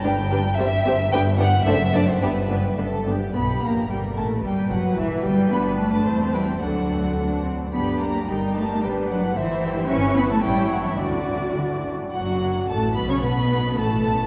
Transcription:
<<
  \new Staff \with { instrumentName = "Violin section" } { \time 2/4 \key g \major \tempo 4 = 110 <g' b'>8 <g' b'>8 <g' c''>8 <g' c''>8 | <g' b'>8 <g' b'>8 <a' c''>8 <a' c''>8 | <g' b'>8 <g' b'>8 a'8 g'8 | b''8 bes''8 g''8 a''8 |
g''8 fis''8 e''8 g''8 | b''8 a''4 g''8 | fis''4. r8 | b''8 bes''8 g''8 a''8 |
g''8 fis''8 e''4 | \key fis \phrygian cis'''8 b''16 a''16 g''8 fis''16 e''16 | d''4. r8 | fis'4 a'8 b'16 cis''16 |
b'4 a'4 | }
  \new Staff \with { instrumentName = "Violin section" } { \time 2/4 \key g \major g''4 e''4 | g''8 fis''8 e''8 d''16 c''16 | b'4 r4 | g'4 bes'4 |
b'2~ | b'4 c''8 e'8 | fis'4. r8 | g'4 bes'4 |
b'4 c''8 g'8 | \key fis \phrygian e'4 e'4 | fis'4. r8 | fis''4 a''8 b''16 cis'''16 |
b''4 a''4 | }
  \new Staff \with { instrumentName = "Viola section" } { \time 2/4 \key g \major << { d'8 d'8 c'8 c'8 | d'8 d'8 d'8 d'8 | d'8 d'8 d'8 d'8 | b8 bes8 g8 a8 |
g8 fis8 e8 g8 | b'4 c''8 b'8 | a'4 d'8 c'8 | g'4 g'4~ |
g'4 c''4 | \key fis \phrygian b'4 cis''4 | d''4. r8 | fis4 a8 b16 cis'16 |
b4 a4 | } \\ { g8 g8 g8 g8 | b8 b8 a8 a8 | b8 b8 b8 b8 | r2 |
r2 | d'4 c'4 | d'4 r4 | d'4 ees'4 |
d'4 e'4~ | e'4 e'4 | fis'4. r8 | r2 |
r2 | } >> }
  \new Staff \with { instrumentName = "Cello section" } { \clef bass \time 2/4 \key g \major g,4 g,4 | g,4 fis,4 | g,4 g,4 | b8 bes8 g8 a8 |
g8 fis8 e8 g8 | b8 a4 g8 | fis4. r8 | b8 bes8 g8 a8 |
g8 fis8 e4 | \key fis \phrygian cis'8 b16 a16 g8 fis16 e16 | d4. r8 | fis,4 a,8 b,16 cis16 |
b,4 a,4 | }
  \new Staff \with { instrumentName = "Double bass section" } { \clef bass \time 2/4 \key g \major g,,4 g,,4 | g,,4 fis,,4 | g,,4 g,,4 | b,,8 bes,,8 g,,8 a,,8 |
g,,8 fis,,8 e,,8 g,,8 | g,,4 e,4 | d,4. r8 | g,,4 g,,4 |
g,,4 g,,4 | \key fis \phrygian g,,4 a,,4 | d,4 d4 | fis,,4 a,,8 b,,16 r16 |
b,,4 a,,4 | }
>>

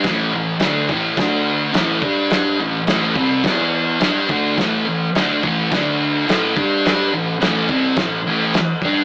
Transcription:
<<
  \new Staff \with { instrumentName = "Distorted electric guitar" } { \clef bass \time 4/4 \key a \minor \tempo 4 = 106 <a, e a>8 <a, e>8 <d a d'>8 <a, e a>8 <d a d'>4 <a, e a>8 <g d' g'>8~ | <g d' g'>8 <a, e>8 <a, e a>8 <c g c'>8 <e b e'>4 <g d' g'>8 <d a d'>8 | <a, e a>8 <a, e>8 <d a d'>8 <a, e a>8 <d a d'>4 <a, e a>8 <g d' g'>8~ | <g d' g'>8 <a, e>8 <a, e a>8 <c g c'>8 <a, e>8 <a, e a>8 r8 <g d' g'>8 | }
  \new DrumStaff \with { instrumentName = "Drums" } \drummode { \time 4/4 <cymc bd sn>4 <cymc sn>8 bd8 <cymc bd sn>4 <cymc sn>8 bd8 | <cymc sn>4 <cymc sn>8 bd8 <cymc bd sn>4 <cymc sn>8 bd8 | <cymc bd sn>4 <cymc sn>8 bd8 <cymc bd sn>4 <cymc sn>8 bd8 | <cymc sn>4 <cymc sn>8 bd8 <cymc bd sn>4 <cymc sn>8 bd8 | }
>>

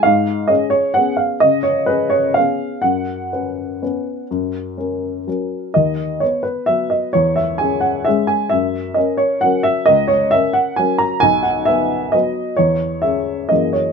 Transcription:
\new Staff \with { instrumentName = "Upright piano" } { \time 3/4 \key cis \dorian \tempo 4 = 130 << { eis''4 dis''8 cis''8 fis''8 eis''8 | dis''8 cis''8 b'8 cis''8 eis''4 | fis''2.~ | fis''2 r4 |
dis''4 cis''8 b'8 e''8 dis''8 | cis''8 e''8 gis''8 fis''8 e''8 gis''8 | e''4 dis''8 cis''8 fis''8 e''8 | dis''8 cis''8 e''8 fis''8 gis''8 ais''8 |
gis''8 fis''8 e''4 dis''4 | cis''4 e''4 dis''8 cis''8 | } \\ { gis,4 <cis' gis'>4 <b cis' gis'>4 | cis4 <cis' gis'>4 <b cis' gis'>4 | fis,4 <cis' b'>4 <b cis' b'>4 | fis,4 <cis' ais'>4 <fis cis' ais'>4 |
dis,4 <b b'>4 <fis b b'>4 | e,4 <cis' gis'>4 <gis cis' gis'>4 | fis,4 <cis' ais'>4 <fis cis' ais'>4 | cis,4 <cis' ais'>4 <fis cis' ais'>4 |
b,,4 <b b'>4 <fis b b'>4 | e,4 <cis' gis'>4 <fis, e ais gis'>4 | } >> }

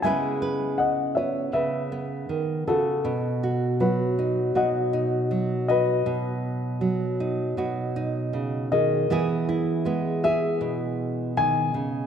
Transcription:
<<
  \new Staff \with { instrumentName = "Grand piano" } { \time 4/4 \key e \major \tempo 4 = 80 << { gis''4 fis''8 e''8 e''4. a'8~ | a'4 b'4 fis''4 r8 dis''8~ | dis''2. r8 dis''8~ | dis''4. e''4. gis''4 | } \\ { e''4 dis''8 cis''8 b'4. fis'8~ | fis'4 fis'4 dis''4 r8 b'8~ | b'2. r8 gis'8~ | gis'4. gis'2 r8 | } >> }
  \new Staff \with { instrumentName = "Nylon-string guitar" } { \time 4/4 \key e \major << { <gis b e' b'>8 b'4 b4 b4.~ | b8 fis'4 dis'8 fis'8 dis'4 fis'8 | r4. dis'8 fis'8 dis'4. | <b e' gis'>8 e'8 b8 gis'2~ gis'8 | } \\ { cis2 cis4 dis8 cis8 | b,4 fis4 b,4 fis4 | b,4 fis4 b,4 cis8 dis8 | e4 gis4 b,4 dis8 cis8 | } >> }
>>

